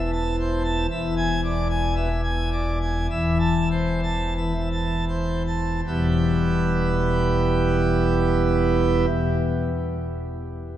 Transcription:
Already playing: E1 E2 E5
0.13 A5
0.40 C5
0.64 A5
0.91 E1 E2 E5
1.17 G#5
1.44 D5
1.70 G#5
1.96 B2 E5
2.24 G#5
2.52 D5
2.81 G#5
3.10 E1 E2 E5
3.40 A5
3.71 C5
4.03 A5
4.38 E3 E5
4.72 A5
5.08 C5
5.47 A5
5.87 E1 E2 B2 G3 B3 E4 G4

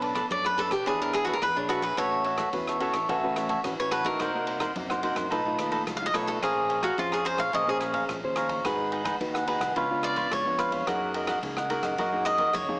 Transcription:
Already playing: B1 B3 D4 A4 C#5
0.01 D4 A4 B4 D5, ride
0.15 D4 A4 B4 D5, kick, cross-stick, ride
0.30 F#2 F#3 D4 A4 C#5 D5, kick, ride
0.45 A4 B4 D5, cross-stick
0.57 D4 A4 B4 C#5 D5, ride
0.70 B1 G4 A4 B4 D5, kick, cross-stick, ride
0.86 E2 E3 D4 G#4 B4 C#5 E5, kick, ride
1.00 D4 G#4 A#4 C#5
1.13 D4 G#4 B4 E5, cross-stick, ride
1.25 D4 F#4 G#4 B4 E5, kick, ride
1.33 A#4
1.42 E2 B4, kick, cross-stick, ride
1.56 A#1 D4 G#4 C#5
1.69 D4 F#4 G#4 B4 E5, cross-stick, ride
1.82 G#4 B4 E5, kick, ride
1.97 A1 A3 C#4 F#4 A4 B4 C#5 E5, kick, cross-stick, ride
2.24 F#4 A4 C#5 E5, ride
2.38 F#4 A4 C#5 E5, kick, cross-stick, ride
2.53 E2 E3 C#4 F#4 B4, kick, ride
2.67 A4 C#5 E5, cross-stick
2.80 C#4 F#4 A4 B4 C#5 E5, ride
2.92 A1 A4 C#5 E5, kick, cross-stick, ride
3.09 A1 A3 C#4 F#4 A4 B4 C#5 E5, kick, ride
3.23 C#4 F#4 B4
3.36 F#4 A4 C#5 E5, cross-stick, ride
3.49 F#4 A4 C#5 E5, kick, ride
3.64 A1 E3 C#4 F#4 B4, kick, cross-stick, ride
3.79 A1 C#4 F#4 B4 C#5
3.91 F#4 A4 B4 C#5 E5, cross-stick, ride
4.04 A#3 D#4 F#4 A4 A#4 C#5 E5, kick, ride
4.20 C2 C3 D#4 A#4 C5 F#5, kick, cross-stick, ride
4.35 A#3 D#4 F#4
4.47 D#4 A#4 C5 F#5, ride
4.60 D#4 A#4 C5 F#5, kick, cross-stick, ride
4.75 F#2 C3 A#3 D#4 F#4, kick, ride
4.89 A#3 D#4 F#4 A#4 C5 F#5, cross-stick
5.02 A#3 D#4 F#4 A#4 C5 F#5, ride
5.15 F#2 A#4 C5 F#5, kick, cross-stick, ride
5.30 B1 B2 A3 D#4 F4 A4 B4 D#5, kick, ride
5.46 A3 D#4 F4
5.58 D#2 D#4 A4 B4 D#5, cross-stick, ride
5.71 D#4 A4 B4 D#5, kick, ride
5.87 C#2 F#3, kick, cross-stick, ride
5.97 F5
6.01 A3 D#4 F4
6.06 D#5
6.14 B1 A3 D#4 F4 A4 B4 C#5 D#5, cross-stick, ride
6.27 A4 B4 D#5, kick, ride
6.42 A#1 A#3 C#4 G#4 C5 C#5 F5 A#5, kick, cross-stick, ride
6.69 G#4 C#5 F5 A#5, ride
6.82 F#4 G#4 C#5 F5 A#5, kick, cross-stick, ride
6.98 F2 F3 C#4 F4 G#4 C5, kick, ride
7.12 G#4 C#5 F5 A#5, cross-stick
7.24 C#4 G#4 C5 C#5 F5 A#5, ride
7.37 A#1 C#5 F5 A#5, kick, cross-stick, ride
7.53 A#1 A#3 C#4 G#4 C5 C#5 D#5 F5 A#5, kick, ride
7.68 C#4 G#4 C5
7.80 G#4 C#5 F5 A#5, cross-stick, ride
7.93 G#4 C#5 F5 A#5, kick, ride
8.09 A#1 F3, kick, cross-stick, ride
8.24 D#2 C#4 G#4 C5
8.36 G#4 C#5 F5 A#5, cross-stick, ride
8.49 C#5 F5 A#5, kick, ride
8.64 G#1 G#3 D#4 F#4 G#4 B4 F#5, kick, cross-stick, ride
8.92 D#4 G#4 B4 F#5, ride
9.04 D#4 G#4 B4 F#5, kick, cross-stick, ride
9.20 D#2 D#3 D#4 F#4 B4, kick, ride
9.34 G#4 B4 F#5, cross-stick
9.47 D#4 F#4 G#4 B4 F#5, ride
9.60 C2 G#4 B4 F#5, kick, cross-stick, ride
9.75 C#2 C#3 B3 D4 F4 B4 C#5 F5, kick, ride
9.90 B3 D4 F4
10.03 F4 B4 C#5 D5 F5, cross-stick, ride
10.16 F4 B4 C#5 F5, kick, ride
10.31 C#2 G#3 C#5, kick, cross-stick, ride
10.45 F2 B3 D4 F4
10.58 F4 B4 C#5 F5, cross-stick, ride
10.72 B4 C#5 F5, kick, ride
10.87 F#2 F#3 A#3 D#4 F#4 G#4 A#4 D#5 F#5, kick, cross-stick, ride
11.14 F#4 A#4 D#5 F#5, ride
11.27 F#4 A#4 D#5 F#5, kick, cross-stick, ride
11.43 C#2 C#3 A#3 D#4 G#4, kick, ride
11.57 A#4 D#5 F#5, cross-stick
11.70 A#3 D#4 F#4 G#4 A#4 D#5 F#5, ride
11.82 F#2 A#4 D#5 F#5, kick, cross-stick, ride
11.98 F#2 F#3 A#3 D#4 F#4 G#4 A#4 D#5 F#5, kick, ride
12.12 A#3 D#4 G#4
12.25 F#4 A#4 D#5 F#5, cross-stick, ride
12.38 F#4 A#4 D#5 F#5, kick, ride
12.53 F#2 C#3 C#5, kick, cross-stick, ride
12.68 F2 A#3 D#4 G#4

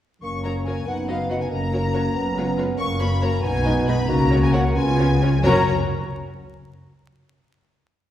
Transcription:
0.22 F#1 F#2 A#3 C#4 C#6
0.44 F#3 F#4 A#4 C#5 A#5
0.65 F#3 F#4 A#4 C#5 G#5
0.87 F#1 F#2 B3 D#4 F#5
1.08 F#3 F#4 B4 D#5 F5
1.29 F#3 F#4 B4 D#5 F#5
1.40 G#5
1.50 F#1 F#2 A#3 C#4 A#5
1.72 F#3 F#4 A#4 C#5
1.94 F#3 F#4 A#4 C#5
2.15 F#1 F#2 B3
2.36 G#3 F4 B4 C#5
2.57 G#3 F4 B4 C#5
2.78 F#1 F#2 A#3 C#6
2.99 A#3 F#4 A#4 C#5 B5
3.21 A#3 F#4 A#4 C#5 A#5
3.43 B1 B2 B3 D#4 G#5
3.65 G#3 D#4 B4 D#5
3.86 G#3 D#4 B4 D#5 B5
4.08 C#2 C#3 A#3 F#4 A#5
4.31 C#4 F#4 A#4 C#5
4.42 G#5
4.52 C#4 F#4 A#4 C#5 F#5
4.75 C#2 C#3 B3 F4 G#5
4.98 C#4 F4 B4 C#5
5.21 C#4 F4 B4 C#5
5.43 F#1 F#2 C#4 F#4 A#4 C#5 A#5

